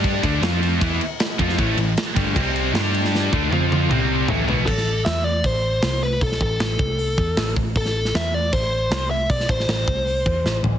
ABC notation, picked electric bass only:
X:1
M:4/4
L:1/8
Q:1/4=156
K:Am
V:1 name="Picked electric bass" clef=bass
G,, D,, F,,2 E,, z2 F,, | A,,, A,,, z G,,, C,,2 G,,2- | G,, D,, F,,2 C,,2 A,,, B,,, | A,,,2 E,,2 A,,,2 C,,2 |
B,,, A,,, A,,, C,,2 E,, A,,, A,,, | A,,,2 E,,2 A,,,2 C,,2 | B,,, A,,, A,,, C,,2 E,, A,,, A,,, |]